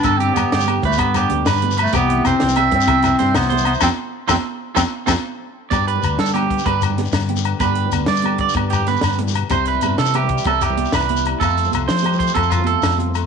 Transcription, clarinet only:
\new Staff \with { instrumentName = "Clarinet" } { \time 12/8 \key g \mixolydian \tempo 4. = 127 d'8 c'8 b4 r8 a8 b4 r4. a8 | b4 c'4. c'2 b4 b8 | c'8 r4 c'8 r4 c'8 r8 c'8 r4. | r1. |
r1. | r1. | r1. | }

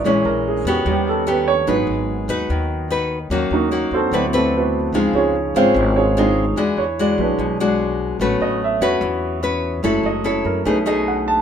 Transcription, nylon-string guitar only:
\new Staff \with { instrumentName = "Nylon-string guitar" } { \time 4/4 \key cis \minor \tempo 4 = 147 << { <gis cis' e'>4. <b cis' g'>4. <b cis' g'>8 r8 | <dis' fis' b'>4. <dis' fis' b'>4. <dis' fis' b'>8 r8 | <ais cis' fis'>4 <ais cis' fis'>8 r8 <c' fis' b'>8 <c' fis' b'>4. | <gis bis eis'>4 r8 <gis bis eis'>4. <gis bis eis'>8 r8 |
<gis d' fis'>8 r8 <gis d' fis'>4. <gis d' fis'>4. | <cis' fis' b'>4 r8 <cis' fis' b'>4. <cis' fis' b'>4 | <cis' e' a'>8 r8 <cis' e' a'>4 <a dis' gis'>8 <a dis' gis'>4. | } \\ { ais,2 dis2 | gis2 dis2 | dis2 d2 | cis2 gis,2 |
e2 b,2 | a2 e2 | fis2 b,2 | } >> }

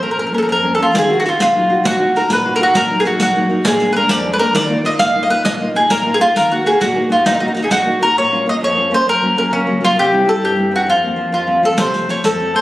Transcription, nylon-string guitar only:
\new Staff \with { instrumentName = "Nylon-string guitar" } { \time 6/8 \key bes \minor \tempo 4. = 133 bes,8 <f bes des'>8 <f bes des'>8 f,8 <f bes des'>8 <f bes des'>8 | \key ees \minor ees8 <ees' f' ges'>8 <ees' f' ges'>8 bes,8 <ges ees' f'>8 <ees' f' ges'>8 | bes,8 <ees' f' ges'>8 <ees' f' ges'>8 bes,8 <ees' f' ges'>8 <ees' f' ges'>8 | bes,8 <ges bes ees'>8 <ges bes ees'>8 bes,8 <ges bes ees'>8 <ges bes ees'>8 |
bes,8 <aes bes d'>8 <aes bes d'>8 f,8 <aes bes d'>8 <aes bes d'>8 | ees8 <bes ees' f'>8 <bes ees' f'>8 bes,8 <bes ees' f'>8 <bes ees' f'>8 | bes,8 <bes ees' f'>8 <bes ees' f'>8 bes,8 <bes ees' f'>8 <bes ees' f'>8 | ees8 <bes ees' ges'>8 <bes ees' ges'>8 bes,8 <bes ees' ges'>8 <bes ees' ges'>8 |
bes,8 <bes ees' ges'>8 <bes ees' ges'>8 bes,8 <bes ees' ges'>8 <bes ees' ges'>8 | \key bes \minor bes,8 <bes des' f'>8 <bes des' f'>8 f,8 <bes des' f'>8 <bes des' f'>8 | ges,8 <ges bes des'>8 <ges bes des'>8 des8 <ges bes des'>8 <ges bes des'>8 | c8 <g c' e'>8 <g c' e'>8 g,8 <g c' e'>8 <g c' e'>8 |
f,8 <f bes c'>8 <f bes c'>8 f,8 <f a c'>8 <f a c'>8 | c8 <f a c'>8 <f a c'>8 f,8 <f a c'>8 <f a c'>8 | }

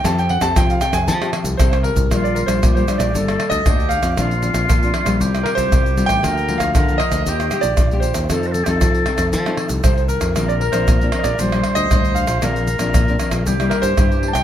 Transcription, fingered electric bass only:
\new Staff \with { instrumentName = "Fingered electric bass" } { \clef bass \time 4/4 \key bes \major \tempo 4 = 116 f,8. f,16 f8 r16 f,16 f8 r16 c,16 c,8. c,16 | bes,,8. bes,,16 bes,8 r16 bes,,16 g,,8 r16 d,16 d,8. f,16 | bes,,8. bes,,16 bes,8 r16 bes,,16 c,8 r16 c,16 c,8. a,,16 | d,8. d,16 d8 r16 d,16 ees,8 r16 bes,,16 bes,,8. ees,16 |
f,8. f,16 f8 r16 f,16 f8 r16 c,16 c,8. f,16 | bes,,8. bes,,16 bes,8 r16 bes,,16 bes,,8 r16 d,16 d,8. bes,,16 | bes,,8. bes,,16 bes,8 r16 bes,,16 c,8 r16 g,16 g,8. c,16 | }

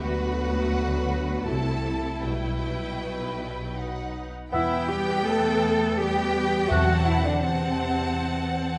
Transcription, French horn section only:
\new Staff \with { instrumentName = "French horn section" } { \clef bass \time 3/4 \key e \minor \tempo 4 = 82 << { b2 e'4~ | e'2 dis'8 r8 | e8 g8 a4 g4 | fis8 e16 d16 c4. r8 | } \\ { fis2 a4 | g2 fis8 r8 | r2. | r2. | } >> }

